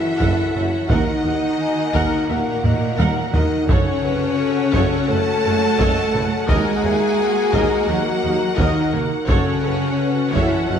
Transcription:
Already playing: E3 C#4 E4 F#4 A4 E5 F#5
0.19 F#1 F#2 A4 F#5, taiko
0.55 F#1 F#2 A4 C#5 E5
0.87 D#2 D#3 A#3 D#4 A#4 D#5 F#5, taiko
0.92 A#4
1.24 D#2 A#4 D#5 F#5
1.61 G#5
1.94 D#2 A#4 F#5, taiko
2.29 D#2 A#2 A#3 A#4 E5 F#5
2.64 D#2 A#4 D#5 F#5, taiko low-mid
2.98 D#2 A#4 F#5, taiko high
3.33 D#2 D#3 D#4 A#4 D#5, taiko low
3.67 F#1 F#2 C#3 C#4 F#4 A4 C#5 F#5, taiko
4.04 F#1 F#2 A4 B4
4.39 A4
4.73 F#1 F#2 A4 C#5, taiko
5.09 F#1 F#2 A3 A4 B4 C#5 A5
5.43 F#1 F#2 A4 C#5
5.79 F#1 F#2 A4 C#5 D#5, taiko
6.14 F#1 F#2 A4 B4 C#5, taiko mid
6.48 D#2 G#3 A#3 G#4 A#4 D#5 G#5, taiko
6.83 D#2 A#4 C#5 E5
7.19 F#5
7.53 D#2 A#4 D#5, taiko
7.87 D#2 F#3 F#4 A#4 C#5 F#5
8.23 D#2 A#4 D#5
8.56 D#2 D#3 D#4 A#4 D#5 F#5, taiko
8.93 D#2 A#4 C#5, taiko mid
9.27 F#1 F#2 C#3 C#4 F#4 A4 C#5 F#5, taiko
9.63 F#1 F#2 A4 B4
9.99 B4
10.33 F#1 F#2 E3 E4 A4 C#5 E5, taiko
10.68 F#1 F#2 F#3 F#4 A4 B4 D#5 F#5

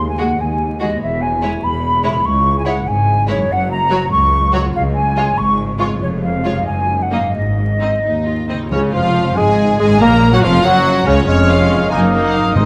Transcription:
Already playing: D#2 D#3 G#3 F#4 G#4
0.09 G#5
0.18 G#3 F#4 G#4 F#5
0.39 D#2 G#5
0.80 E3 G#3 F#4 G#4 D#5
0.88 G#3
0.92 E4
0.97 C#5
1.01 E1 E2 E5
1.22 G#5
1.42 G#3 E4 C#5
1.63 E1 E2 B5
2.04 C#3 G#3 E4 C#5 B5
2.11 G#3
2.16 E4
2.20 C#2 C#5
2.24 C#6
2.58 G#5
2.65 G#3 E4 C#5 F#5
2.86 G#1 G#2 G#5
3.27 F#2 G#3 E4 C#5
3.35 F#3
3.40 F#4
3.44 C#5
3.49 F#1 F#2 F#5
3.70 A#5
3.90 F#3 F#4 C#5
4.11 C#2 C#6
4.53 C#3 F#3 F#4 C#5 C#6
4.61 G#3
4.65 F4
4.69 C#5
4.74 C#2 F5
4.95 G#5
5.17 G#3 F4 C#5
5.37 G#1 G#2 C#6
5.79 G#3 F4 C#5 C#6
5.83 F2
5.88 G#3
5.92 F4
5.97 C#5
6.01 F1 F2 C#5
6.23 F5
6.44 G#3 F4 C#5
6.49 F#2
6.53 A#3
6.58 D#4
6.62 D#5
6.67 F#1 F#2 G#5
7.01 F#5
7.11 A#3 D#4 D#5 F5
7.16 G#2
7.21 C4
7.26 D#4
7.30 D#5
7.35 G#1 G#2 D#5
7.80 C4 D#4 D#5
8.03 D#2 D#4
8.27 F4
8.49 C4 D#4 D#5
8.53 C#3
8.58 C#4
8.62 F4
8.67 C#5
8.71 C#2 C#3 C#4 C#5
8.93 F1 F2 F3 F4 F5
9.36 G#1 G#2 G#3 G#4 G#5
9.79 G#1 G#2 G#3 G#4 G#5
9.83 F#2
9.88 C#4
9.92 F#4
9.97 A#2 A#3 A#4 C#5 A#5
10.01 A#1 A#3
10.32 F#2 F#3 F#4 F#5
10.43 F1 F2 F3 F4 F5
10.64 F#1 F#2 F#3 F#4 F#5
11.06 C#2 F2 C#3 C#4 C#5
11.14 C#4
11.19 G#4
11.23 C#5
11.27 F1 F2 G#3 C#4 C#5 F6
11.48 G#3 C#4 F4 C#5 F5
11.74 F#2
11.78 A#3
11.83 A#4
11.87 D#5
11.91 F#1 F#2 A#3 D#4 A#4 G#5 D#6
12.12 A#3 D#4 A#4
12.25 F#5
12.34 G#2 F5
12.42 C4
12.46 G#4
12.51 D#5
12.56 G#1 G#2 G#3 C4 C5 D#5

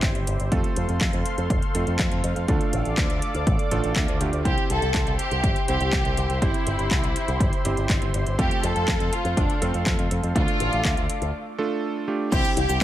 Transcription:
Already playing: C4 E4 G4 C5 E5 C6
0.03 G1, kick, clap, closed hi-hat
0.15 G1, closed hi-hat
0.27 G1, closed hi-hat
0.40 G1, closed hi-hat
0.52 F2 A3 C4 F4 A4 F5 C6, kick, closed hi-hat
0.64 closed hi-hat
0.76 F2, closed hi-hat
0.89 F2, closed hi-hat
1.01 F2, kick, clap, closed hi-hat
1.13 F2, closed hi-hat
1.26 closed hi-hat
1.38 F2, closed hi-hat
1.50 F1, kick, closed hi-hat
1.62 closed hi-hat
1.75 F2 A3 C4 F4 A4, closed hi-hat
1.87 F2, closed hi-hat
1.99 F2, kick, clap, closed hi-hat
2.12 F2, closed hi-hat
2.24 F2, closed hi-hat
2.36 F2, closed hi-hat
2.48 D2 A3 D4 F4 A4 D5 D6, kick, closed hi-hat
2.61 closed hi-hat
2.73 A1, closed hi-hat
2.85 A1, closed hi-hat
2.98 D2, kick, clap, closed hi-hat
3.10 D2, closed hi-hat
3.22 closed hi-hat
3.35 D2, closed hi-hat
3.47 A1, kick, closed hi-hat
3.59 closed hi-hat
3.71 A1 A3 D4 F4 A4, closed hi-hat
3.84 A1, closed hi-hat
3.96 D2, kick, clap, closed hi-hat
4.08 D2, closed hi-hat
4.21 D2 A3 D4 F4 G4, closed hi-hat
4.33 D2, closed hi-hat
4.45 C2 C4 E4 G4 C5 E5 C6, kick, closed hi-hat
4.58 closed hi-hat
4.70 C2 A4, closed hi-hat
4.82 C2, closed hi-hat
4.94 C2, kick, clap, closed hi-hat
5.07 C2, closed hi-hat
5.19 G4, closed hi-hat
5.31 C2, closed hi-hat
5.44 G1, kick, closed hi-hat
5.56 closed hi-hat
5.68 C2 C4 E4 G4 C5, closed hi-hat
5.80 C2, closed hi-hat
5.93 C2, kick, clap, closed hi-hat
6.05 C2, closed hi-hat
6.17 C2, closed hi-hat
6.30 C2, closed hi-hat
6.42 G1 C4 E4 G4 C5, kick, closed hi-hat
6.54 closed hi-hat
6.67 G1, closed hi-hat
6.79 G1, closed hi-hat
6.91 C2, kick, clap, closed hi-hat
7.04 C2, closed hi-hat
7.16 closed hi-hat
7.28 C2, closed hi-hat
7.40 G1, kick, closed hi-hat
7.53 closed hi-hat
7.65 G1 C4 E4 G4 C5, closed hi-hat
7.77 G1, closed hi-hat
7.90 G1, kick, clap, closed hi-hat
8.02 G1, closed hi-hat
8.14 G1, closed hi-hat
8.27 G1, closed hi-hat
8.39 F2 A3 C4 F4 G4 A4 F5, kick, closed hi-hat
8.51 closed hi-hat
8.63 F2 A4, closed hi-hat
8.76 F2, closed hi-hat
8.88 F2, kick, clap, closed hi-hat
9.00 F2, closed hi-hat
9.13 F4, closed hi-hat
9.25 F2, closed hi-hat
9.37 F1 D4, kick, closed hi-hat
9.50 closed hi-hat
9.62 F2 A3 C4 F4 A4, closed hi-hat
9.74 F2, closed hi-hat
9.86 F2, kick, clap, closed hi-hat
9.99 F2, closed hi-hat
10.11 F2, closed hi-hat
10.23 F2, closed hi-hat
10.35 D2 A3 D4 F4 A4 D5 F5 D6, kick, closed hi-hat
10.48 closed hi-hat
10.60 A1, closed hi-hat
10.72 A1, closed hi-hat
10.85 D2, kick, clap, closed hi-hat
10.97 D2, closed hi-hat
11.09 closed hi-hat
11.22 D2, closed hi-hat
11.58 A3 D4 F4 A4
12.08 A3 D4 F4 G4
12.32 C2 C4 E4 G4 C5, kick, closed hi-hat, crash, cabasa
12.45 closed hi-hat, cabasa
12.57 C2 E4 G4, closed hi-hat
12.69 C2 G4, closed hi-hat, cabasa

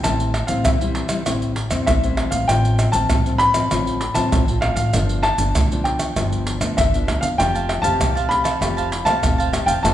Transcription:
0.04 A1 A2 G3 C4 E4 A5, pandeiro, tamborim, maracas, surdo
0.20 pandeiro, maracas
0.34 pandeiro, tamborim
0.47 A1 G3 C4 E4 F5, pandeiro, maracas, surdo
0.64 E2 E3 E5, pandeiro, tamborim, maracas, surdo
0.81 G3 C4 E4, pandeiro, maracas
0.95 pandeiro
1.09 G3 C4 E4, pandeiro, tamborim, maracas
1.26 A1 A2 G3 C4 E4, pandeiro, tamborim, maracas, surdo
1.42 pandeiro, maracas, surdo
1.56 pandeiro
1.71 E2 G3 C4 E4, pandeiro, tamborim, maracas, surdo
1.86 A1 E3 E5, pandeiro, tamborim, maracas, surdo
2.03 G3 C4 E4, pandeiro, maracas
2.17 pandeiro, tamborim
2.31 A1 F5, pandeiro, maracas, surdo
2.48 A1 A2 F3 C4 F4 G5, pandeiro, tamborim, maracas, surdo
2.65 pandeiro, maracas
2.79 pandeiro, tamborim, maracas
2.92 A1 F3 C4 F4 A5, pandeiro, maracas, surdo
3.10 C2 A2, pandeiro, tamborim, maracas, surdo
3.26 F3 C4 F4, pandeiro, maracas
3.38 B5, pandeiro
3.54 F3 C4 F4, pandeiro, tamborim, maracas
3.71 A1 A2 F3 C4 F4, pandeiro, tamborim, maracas, surdo
3.87 pandeiro, maracas, surdo
4.01 pandeiro
4.15 C2 F3 C4 F4 A5, pandeiro, tamborim, maracas, surdo
4.32 A1 A2, pandeiro, tamborim, maracas, surdo
4.48 F3 C4 F4, pandeiro, maracas
4.61 F5, pandeiro, tamborim
4.76 A1 F5, pandeiro, maracas, surdo
4.93 G1 G2 F3 B3 D4, pandeiro, tamborim, maracas, surdo
5.09 pandeiro, maracas
5.23 A5, pandeiro, tamborim
5.38 G1 F3 B3 D4, pandeiro, maracas, surdo
5.55 D2 D3, pandeiro, tamborim, maracas, surdo
5.72 F3 B3 D4, pandeiro, maracas
5.84 G5, pandeiro
5.99 pandeiro, tamborim, maracas
6.16 G1 G2 F3 B3 D4, pandeiro, tamborim, maracas, surdo
6.32 pandeiro, maracas, surdo
6.47 pandeiro
6.61 D2 F3 B3 D4, pandeiro, tamborim, maracas, surdo
6.77 G1 D3 E5, pandeiro, tamborim, maracas, surdo
6.94 F3 B3 D4, pandeiro, maracas
7.07 D2, pandeiro, tamborim, surdo
7.21 E2 F5, pandeiro, maracas, surdo
7.38 F1 F3 A3 C4 G4 C5 F5 G5 A5, pandeiro, tamborim, maracas, surdo
7.55 C5 F5 A5, pandeiro, maracas
7.69 pandeiro, tamborim
7.82 F1 A3 C4 G4 C5 F5 A5, pandeiro, maracas, surdo
8.00 C2 C3 G4 C5 F5 A5, pandeiro, tamborim, maracas, surdo
8.15 C5 F5 A5, pandeiro, maracas
8.29 A3 C4 G4 B5, pandeiro
8.44 C5 F5 A5, pandeiro, tamborim, maracas
8.61 F1 F3 A3 C4 G4 C5 F5 A5, pandeiro, tamborim, maracas, surdo
8.77 C5 F5 A5, pandeiro, maracas, surdo
8.91 muted cavaquinho stroke, pandeiro
9.05 C2 A3 C4 G4 C5 F5 A5, pandeiro, tamborim, maracas, surdo
9.22 F1 C3, pandeiro, tamborim, maracas, surdo
9.38 C5 F5 A5, pandeiro, maracas
9.52 A3 C4 G4 C5 F5 A5, pandeiro, tamborim, maracas
9.66 F1 C5 F5 G5 A5, pandeiro, maracas, surdo
9.83 F1 F3 C4 D4 F4 A4 C5 D5 A5, pandeiro, tamborim, maracas, surdo

